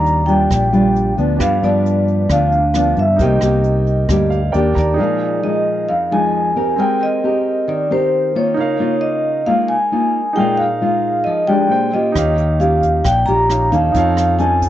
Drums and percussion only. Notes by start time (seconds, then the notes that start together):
0.06 closed hi-hat
0.28 closed hi-hat
0.50 kick, cross-stick, closed hi-hat
0.73 closed hi-hat
0.96 closed hi-hat
1.18 closed hi-hat
1.40 kick, cross-stick, closed hi-hat
1.63 closed hi-hat
1.86 closed hi-hat
2.08 closed hi-hat
2.30 kick, cross-stick, closed hi-hat
2.52 closed hi-hat
2.74 cross-stick, closed hi-hat
2.96 closed hi-hat
3.19 kick, closed hi-hat
3.41 cross-stick, closed hi-hat
3.64 closed hi-hat
3.87 closed hi-hat
4.09 kick, cross-stick, closed hi-hat
4.32 closed hi-hat
4.54 closed hi-hat
4.76 kick, closed hi-hat
12.16 kick, cross-stick, closed hi-hat
12.38 closed hi-hat
12.60 closed hi-hat
12.83 kick, closed hi-hat
13.05 kick, cross-stick, closed hi-hat
13.27 closed hi-hat
13.50 cross-stick, closed hi-hat
13.72 kick, closed hi-hat
13.94 kick, closed hi-hat
14.17 cross-stick, closed hi-hat
14.39 closed hi-hat
14.62 kick, closed hi-hat